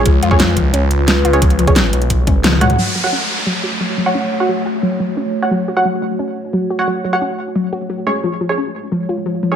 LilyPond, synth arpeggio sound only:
\new Staff \with { instrumentName = "Synth arpeggio sound" } { \clef bass \time 4/4 \key fis \minor \tempo 4 = 176 eis8 eis'8 eis8 eis8 cis'8 r8 eis8 eis'8 | eis8 eis8 cis'8 r8 eis8 cis'8 eis8 gis8 | fis8 fis8 cis'8 r8 fis8 fis'8 fis8 fis8 | cis'8 r8 fis8 fis'8 fis8 fis8 cis'8 r8 |
fis8 fis'8 fis8 fis8 cis'8 r8 fis8 fis'8 | fis8 fis8 cis'8 r8 fis8 fis'8 fis8 gis8 | eis8 eis8 cis'8 r8 eis8 eis'8 eis8 eis8 | }